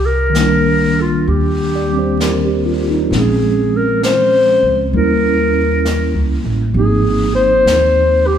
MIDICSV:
0, 0, Header, 1, 5, 480
1, 0, Start_track
1, 0, Key_signature, -3, "minor"
1, 0, Tempo, 925926
1, 1141, Tempo, 910470
1, 1621, Time_signature, 4, 2, 24, 8
1, 4400, End_track
2, 0, Start_track
2, 0, Title_t, "Clarinet"
2, 0, Program_c, 0, 71
2, 31, Note_on_c, 0, 70, 72
2, 524, Note_on_c, 0, 65, 56
2, 532, Note_off_c, 0, 70, 0
2, 665, Note_on_c, 0, 67, 64
2, 673, Note_off_c, 0, 65, 0
2, 1465, Note_off_c, 0, 67, 0
2, 1649, Note_on_c, 0, 68, 62
2, 1966, Note_on_c, 0, 70, 64
2, 1974, Note_off_c, 0, 68, 0
2, 2109, Note_off_c, 0, 70, 0
2, 2112, Note_on_c, 0, 72, 75
2, 2564, Note_off_c, 0, 72, 0
2, 2592, Note_on_c, 0, 70, 71
2, 3367, Note_off_c, 0, 70, 0
2, 3545, Note_on_c, 0, 68, 64
2, 3843, Note_off_c, 0, 68, 0
2, 3856, Note_on_c, 0, 72, 83
2, 4339, Note_on_c, 0, 67, 66
2, 4347, Note_off_c, 0, 72, 0
2, 4400, Note_off_c, 0, 67, 0
2, 4400, End_track
3, 0, Start_track
3, 0, Title_t, "Tine electric piano"
3, 0, Program_c, 1, 4
3, 0, Control_c, 1, 64, 127
3, 154, Note_on_c, 1, 51, 42
3, 172, Note_on_c, 1, 55, 37
3, 191, Note_on_c, 1, 58, 36
3, 212, Note_on_c, 1, 62, 49
3, 910, Note_on_c, 1, 74, 33
3, 980, Note_off_c, 1, 55, 0
3, 986, Note_on_c, 1, 55, 28
3, 1002, Note_on_c, 1, 60, 35
3, 1030, Note_on_c, 1, 72, 32
3, 1053, Note_off_c, 1, 74, 0
3, 1152, Note_on_c, 1, 70, 35
3, 1192, Note_off_c, 1, 72, 0
3, 1271, Note_on_c, 1, 67, 36
3, 1372, Note_off_c, 1, 70, 0
3, 1382, Note_on_c, 1, 65, 39
3, 1473, Note_off_c, 1, 67, 0
3, 1509, Note_on_c, 1, 63, 44
3, 1529, Note_off_c, 1, 65, 0
3, 1598, Note_on_c, 1, 53, 37
3, 1607, Note_off_c, 1, 51, 0
3, 1616, Note_on_c, 1, 56, 33
3, 1621, Note_off_c, 1, 55, 0
3, 1625, Note_off_c, 1, 58, 0
3, 1628, Control_c, 1, 64, 0
3, 1629, Note_off_c, 1, 60, 0
3, 1635, Note_on_c, 1, 60, 35
3, 1636, Note_off_c, 1, 62, 0
3, 1657, Note_on_c, 1, 61, 43
3, 1673, Note_off_c, 1, 63, 0
3, 1720, Control_c, 1, 64, 127
3, 2567, Note_off_c, 1, 53, 0
3, 2574, Note_on_c, 1, 55, 36
3, 2576, Note_off_c, 1, 56, 0
3, 2581, Note_on_c, 1, 58, 32
3, 2584, Control_c, 1, 64, 0
3, 2586, Note_off_c, 1, 60, 0
3, 2586, Note_off_c, 1, 61, 0
3, 2592, Note_on_c, 1, 61, 32
3, 2600, Note_on_c, 1, 64, 38
3, 2694, Control_c, 1, 64, 127
3, 3533, Note_on_c, 1, 53, 36
3, 3535, Note_off_c, 1, 55, 0
3, 3535, Note_off_c, 1, 58, 0
3, 3541, Note_on_c, 1, 58, 32
3, 3543, Control_c, 1, 64, 0
3, 3544, Note_off_c, 1, 61, 0
3, 3548, Note_off_c, 1, 64, 0
3, 3551, Note_on_c, 1, 60, 33
3, 3560, Note_on_c, 1, 63, 43
3, 3647, Control_c, 1, 64, 127
3, 4400, Note_off_c, 1, 53, 0
3, 4400, Note_off_c, 1, 58, 0
3, 4400, Note_off_c, 1, 60, 0
3, 4400, Note_off_c, 1, 63, 0
3, 4400, End_track
4, 0, Start_track
4, 0, Title_t, "Upright bass"
4, 0, Program_c, 2, 32
4, 0, Note_on_c, 2, 36, 58
4, 640, Note_off_c, 2, 36, 0
4, 661, Note_on_c, 2, 39, 57
4, 1598, Note_off_c, 2, 39, 0
4, 1618, Note_on_c, 2, 34, 59
4, 2400, Note_off_c, 2, 34, 0
4, 2420, Note_on_c, 2, 37, 49
4, 2566, Note_off_c, 2, 37, 0
4, 2582, Note_on_c, 2, 39, 61
4, 3198, Note_off_c, 2, 39, 0
4, 3217, Note_on_c, 2, 37, 44
4, 3366, Note_off_c, 2, 37, 0
4, 3378, Note_on_c, 2, 33, 52
4, 3526, Note_off_c, 2, 33, 0
4, 3535, Note_on_c, 2, 32, 64
4, 3994, Note_off_c, 2, 32, 0
4, 4017, Note_on_c, 2, 39, 50
4, 4400, Note_off_c, 2, 39, 0
4, 4400, End_track
5, 0, Start_track
5, 0, Title_t, "Drums"
5, 180, Note_on_c, 9, 25, 25
5, 180, Note_on_c, 9, 38, 29
5, 180, Note_on_c, 9, 44, 41
5, 232, Note_off_c, 9, 38, 0
5, 232, Note_off_c, 9, 44, 0
5, 664, Note_off_c, 9, 25, 0
5, 664, Note_on_c, 9, 25, 24
5, 1142, Note_off_c, 9, 25, 0
5, 1142, Note_on_c, 9, 25, 25
5, 1142, Note_on_c, 9, 38, 33
5, 1142, Note_on_c, 9, 44, 37
5, 1195, Note_off_c, 9, 38, 0
5, 1195, Note_off_c, 9, 44, 0
5, 1627, Note_off_c, 9, 25, 0
5, 1627, Note_on_c, 9, 25, 23
5, 1627, Note_on_c, 9, 38, 23
5, 1679, Note_off_c, 9, 38, 0
5, 2107, Note_off_c, 9, 25, 0
5, 2107, Note_on_c, 9, 25, 27
5, 2107, Note_on_c, 9, 38, 34
5, 2107, Note_on_c, 9, 44, 41
5, 2159, Note_off_c, 9, 38, 0
5, 2159, Note_off_c, 9, 44, 0
5, 2586, Note_off_c, 9, 25, 0
5, 2586, Note_on_c, 9, 25, 25
5, 3067, Note_off_c, 9, 25, 0
5, 3067, Note_on_c, 9, 25, 24
5, 3067, Note_on_c, 9, 38, 30
5, 3067, Note_on_c, 9, 44, 37
5, 3119, Note_off_c, 9, 38, 0
5, 3119, Note_off_c, 9, 44, 0
5, 3546, Note_off_c, 9, 25, 0
5, 3546, Note_on_c, 9, 25, 33
5, 4025, Note_off_c, 9, 25, 0
5, 4025, Note_on_c, 9, 25, 21
5, 4025, Note_on_c, 9, 38, 33
5, 4025, Note_on_c, 9, 44, 34
5, 4078, Note_off_c, 9, 38, 0
5, 4078, Note_off_c, 9, 44, 0
5, 4400, Note_off_c, 9, 25, 0
5, 4400, End_track
0, 0, End_of_file